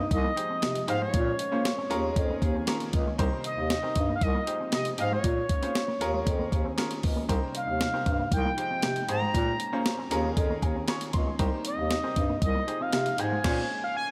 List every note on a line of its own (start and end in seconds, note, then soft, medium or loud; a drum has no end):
0.00 0.10 C3 medium
0.00 0.10 G3 medium
0.00 0.10 A#3 medium
0.00 1.12 D#4 medium
0.11 0.30 C2 loud
0.11 1.13 F3 medium
0.11 1.89 G#3 medium
0.11 0.85 D#5 loud
0.11 kick loud
0.11 closed hi-hat loud
0.24 0.34 A#3 medium
0.36 0.58 D#4 medium
0.36 0.58 G4 medium
0.36 0.58 G#4 medium
0.36 0.58 C5 medium
0.36 muted clean electric guitar stroke soft
0.36 closed hi-hat medium
0.50 0.59 C4 medium
0.62 0.82 C3 medium
0.62 0.72 A#3 medium
0.62 snare loud
0.62 closed hi-hat medium
0.75 muted clean electric guitar stroke soft
0.75 closed hi-hat medium
0.88 1.07 G#2 loud
0.88 1.13 D#4 loud
0.88 1.14 G4 medium
0.88 1.14 G#4 medium
0.88 1.14 C5 loud
0.88 1.01 F5 loud
0.88 closed hi-hat medium
1.01 1.10 G#3 medium
1.01 2.21 C#5 loud
1.14 1.33 A#2 loud
1.14 1.23 A#3 medium
1.14 4.19 A#3 medium
1.14 1.90 C#4 medium
1.14 kick loud
1.14 closed hi-hat loud
1.39 muted clean electric guitar stroke soft
1.39 closed hi-hat medium
1.52 1.71 A#3 loud
1.52 1.73 C#4 medium
1.52 1.62 C#4 medium
1.52 1.73 F4 medium
1.52 1.73 G#4 medium
1.52 1.74 C5 medium
1.65 snare loud
1.65 closed hi-hat medium
1.78 1.88 C4 medium
1.90 2.18 D#2 loud
1.90 3.18 D#3 medium
1.90 2.52 C#4 medium
1.90 3.18 C#4 medium
1.90 2.52 F4 loud
1.90 2.52 G#4 medium
1.90 3.18 G#4 loud
1.90 2.52 A#4 loud
1.90 muted clean electric guitar stroke soft
1.90 closed hi-hat medium
2.04 2.13 A#3 medium
2.16 2.35 F2 loud
2.16 kick loud
2.16 closed hi-hat medium
2.21 2.90 C5 loud
2.30 2.39 A#3 medium
2.42 2.61 D#2 loud
2.42 muted clean electric guitar stroke soft
2.42 kick medium
2.42 closed hi-hat medium
2.55 2.65 C4 medium
2.67 2.77 A#3 medium
2.67 2.89 C#4 loud
2.67 2.89 F4 medium
2.67 2.89 G#4 medium
2.67 2.89 A#4 medium
2.67 snare loud
2.67 closed hi-hat medium
2.80 muted clean electric guitar stroke soft
2.80 closed hi-hat medium
2.93 3.13 C#2 loud
2.93 kick medium
2.93 closed hi-hat medium
3.06 3.16 G#3 medium
3.18 3.28 C2 loud
3.18 4.21 C3 medium
3.18 4.21 G3 medium
3.18 3.29 C4 medium
3.18 3.45 D#4 loud
3.18 5.22 D#4 medium
3.18 3.45 G4 medium
3.18 3.45 A#4 medium
3.18 3.45 C5 loud
3.18 kick loud
3.18 closed hi-hat loud
3.44 4.11 D#5 loud
3.44 muted clean electric guitar stroke medium
3.44 closed hi-hat medium
3.58 3.77 D#2 medium
3.58 3.67 D#4 medium
3.70 snare loud
3.70 closed hi-hat loud
3.82 3.93 C4 medium
3.82 4.09 D#4 medium
3.82 4.09 G4 medium
3.82 4.09 A#4 medium
3.82 4.10 C5 medium
3.96 4.15 G2 medium
3.96 muted clean electric guitar stroke soft
3.96 kick medium
3.96 closed hi-hat medium
4.09 4.19 A#3 medium
4.16 4.24 F5 medium
4.21 4.40 C2 loud
4.21 5.23 F3 medium
4.21 6.00 G#3 medium
4.21 4.73 D#5 medium
4.21 kick loud
4.21 closed hi-hat loud
4.35 4.44 A#3 loud
4.47 4.68 D#4 medium
4.47 4.68 G4 medium
4.47 4.68 G#4 medium
4.47 4.68 C5 medium
4.47 muted clean electric guitar stroke soft
4.47 closed hi-hat medium
4.60 4.70 C4 medium
4.72 4.92 C3 medium
4.72 4.82 A#3 medium
4.72 4.86 D#5 medium
4.72 snare loud
4.72 closed hi-hat medium
4.85 muted clean electric guitar stroke soft
4.85 closed hi-hat medium
4.98 5.17 G#2 loud
4.98 5.24 D#4 medium
4.98 5.24 G4 medium
4.98 5.24 G#4 medium
4.98 5.24 D#5 medium
4.98 5.11 F5 loud
4.98 closed hi-hat medium
5.12 5.21 G#3 medium
5.12 6.32 C#5 loud
5.24 5.43 A#2 loud
5.24 5.34 A#3 medium
5.24 6.00 A#3 medium
5.24 7.27 C#4 medium
5.24 kick loud
5.24 closed hi-hat loud
5.49 muted clean electric guitar stroke soft
5.49 kick loud
5.49 closed hi-hat medium
5.62 5.81 A#3 medium
5.62 5.72 C4 medium
5.62 5.84 C#4 medium
5.62 5.84 F4 medium
5.62 5.84 G#4 medium
5.62 5.84 C5 medium
5.62 closed hi-hat soft
5.75 snare loud
5.75 closed hi-hat medium
5.88 5.98 A#3 medium
6.01 6.28 D#2 loud
6.01 7.28 D#3 medium
6.01 7.28 A#3 medium
6.01 6.62 C#4 medium
6.01 6.62 F4 medium
6.01 7.28 G#4 medium
6.01 6.63 G#4 medium
6.01 6.63 A#4 loud
6.01 muted clean electric guitar stroke soft
6.01 closed hi-hat medium
6.13 6.23 G#3 medium
6.27 6.46 F2 loud
6.27 kick loud
6.27 closed hi-hat loud
6.32 7.00 C5 loud
6.39 6.49 A#3 medium
6.52 6.71 D#2 medium
6.52 muted clean electric guitar stroke medium
6.52 kick loud
6.52 closed hi-hat medium
6.65 6.74 C4 medium
6.78 6.87 A#3 loud
6.78 6.99 C#4 medium
6.78 6.99 F4 medium
6.78 6.99 G#4 medium
6.78 6.99 A#4 medium
6.78 snare loud
6.78 closed hi-hat medium
6.90 muted clean electric guitar stroke soft
6.90 closed hi-hat medium
7.03 7.23 C#2 medium
7.03 kick loud
7.03 open hi-hat medium
7.16 7.26 A#3 medium
7.29 7.39 C2 loud
7.29 8.31 C3 medium
7.29 8.31 G3 medium
7.29 8.31 A#3 medium
7.29 7.39 C4 medium
7.29 7.55 D#4 medium
7.29 8.31 D#4 medium
7.29 7.56 G4 medium
7.29 7.56 A#4 medium
7.29 7.56 C5 loud
7.29 kick loud
7.29 closed hi-hat loud
7.55 8.29 F5 medium
7.55 muted clean electric guitar stroke soft
7.55 closed hi-hat loud
7.67 7.87 D#2 medium
7.67 7.77 D#4 medium
7.81 snare loud
7.81 closed hi-hat medium
7.93 8.03 C4 medium
7.93 8.20 D#4 medium
7.93 8.20 G4 medium
7.93 8.20 A#4 medium
7.93 8.20 C5 medium
8.06 8.25 G2 medium
8.06 muted clean electric guitar stroke soft
8.06 kick loud
8.06 closed hi-hat medium
8.19 8.28 A#3 medium
8.32 8.51 C2 loud
8.32 9.33 F3 medium
8.32 10.10 G#3 medium
8.32 9.33 D#4 medium
8.32 8.57 G5 medium
8.32 kick loud
8.32 closed hi-hat loud
8.45 8.54 A#3 medium
8.57 8.78 D#4 medium
8.57 8.79 G4 medium
8.57 8.79 G#4 medium
8.57 8.79 C5 medium
8.57 9.06 G5 loud
8.57 muted clean electric guitar stroke medium
8.57 closed hi-hat medium
8.71 8.80 C4 medium
8.82 9.02 C3 medium
8.82 8.93 A#3 medium
8.82 snare loud
8.82 closed hi-hat medium
8.96 muted clean electric guitar stroke soft
8.96 closed hi-hat medium
9.08 9.28 G#2 medium
9.08 9.34 D#4 medium
9.08 9.34 G4 medium
9.08 9.34 G#4 medium
9.08 9.35 C5 loud
9.08 10.08 A#5 loud
9.08 closed hi-hat medium
9.22 9.31 G#3 medium
9.34 9.53 A#2 loud
9.34 12.39 A#3 medium
9.34 9.44 A#3 medium
9.34 11.37 C#4 medium
9.34 kick loud
9.34 closed hi-hat loud
9.60 muted clean electric guitar stroke soft
9.60 closed hi-hat medium
9.72 9.92 A#3 medium
9.72 9.94 C#4 medium
9.72 9.82 C#4 medium
9.72 9.94 F4 medium
9.72 9.94 G#4 medium
9.72 9.94 C5 medium
9.86 snare loud
9.86 closed hi-hat loud
9.99 10.08 C4 medium
10.11 10.38 D#2 loud
10.11 11.38 D#3 medium
10.11 10.72 C#4 loud
10.11 10.73 F4 medium
10.11 11.38 G#4 medium
10.11 10.73 G#4 loud
10.11 10.73 A#4 loud
10.11 muted clean electric guitar stroke soft
10.11 closed hi-hat medium
10.24 10.34 A#3 medium
10.37 10.56 F2 loud
10.37 kick loud
10.37 closed hi-hat loud
10.50 10.59 A#3 medium
10.62 10.81 D#2 medium
10.62 10.86 G#5 medium
10.62 muted clean electric guitar stroke soft
10.62 kick medium
10.62 closed hi-hat medium
10.76 10.85 C4 medium
10.88 10.98 A#3 medium
10.88 11.09 C#4 medium
10.88 11.09 F4 medium
10.88 11.09 G#4 medium
10.88 11.10 C#5 loud
10.88 11.12 A#5 medium
10.88 snare loud
10.88 closed hi-hat medium
11.01 muted clean electric guitar stroke medium
11.01 closed hi-hat medium
11.13 11.33 C#2 medium
11.13 11.37 C6 medium
11.13 kick loud
11.13 closed hi-hat medium
11.27 11.36 G#3 medium
11.39 11.49 C2 loud
11.39 12.41 C3 medium
11.39 12.41 G3 medium
11.39 11.49 C4 medium
11.39 11.66 D#4 loud
11.39 12.41 D#4 medium
11.39 11.66 G4 medium
11.39 11.66 A#4 medium
11.39 11.66 C5 loud
11.39 kick loud
11.39 closed hi-hat loud
11.65 12.39 D#5 loud
11.65 muted clean electric guitar stroke soft
11.65 closed hi-hat loud
11.78 11.97 D#2 medium
11.78 11.88 D#4 medium
11.91 snare loud
11.91 closed hi-hat medium
12.03 12.13 C4 medium
12.03 12.30 D#4 medium
12.03 12.30 G4 medium
12.03 12.30 A#4 medium
12.03 12.30 C5 medium
12.16 12.35 G2 medium
12.16 muted clean electric guitar stroke soft
12.16 kick medium
12.16 closed hi-hat medium
12.29 12.39 A#3 medium
12.42 12.61 C2 loud
12.42 13.44 F3 medium
12.42 13.44 G#3 medium
12.42 13.44 D#4 medium
12.42 12.83 D#5 medium
12.42 kick loud
12.42 closed hi-hat medium
12.55 12.64 A#3 medium
12.67 12.89 D#4 medium
12.67 12.89 G4 medium
12.67 12.89 G#4 medium
12.67 12.89 C5 medium
12.67 muted clean electric guitar stroke medium
12.67 closed hi-hat medium
12.80 12.90 C4 medium
12.80 13.21 F5 loud
12.93 13.12 C3 medium
12.93 13.03 A#3 loud
12.93 snare loud
12.93 closed hi-hat medium
13.06 muted clean electric guitar stroke soft
13.06 closed hi-hat medium
13.18 13.38 G#2 loud
13.18 13.44 D#4 medium
13.18 13.44 G4 medium
13.18 13.43 G#4 medium
13.18 13.44 C5 medium
13.18 13.83 G#5 loud
13.18 closed hi-hat medium
13.32 13.41 G#3 medium
13.44 13.62 A#2 loud
13.44 14.11 G#3 medium
13.44 14.11 A#3 medium
13.44 13.62 C#4 loud
13.44 14.11 C#4 medium
13.44 13.62 F4 loud
13.44 13.62 G#4 loud
13.44 13.62 C5 loud
13.44 kick loud
13.44 snare loud
13.44 crash medium
13.84 13.95 F5 medium
13.97 14.08 G#5 loud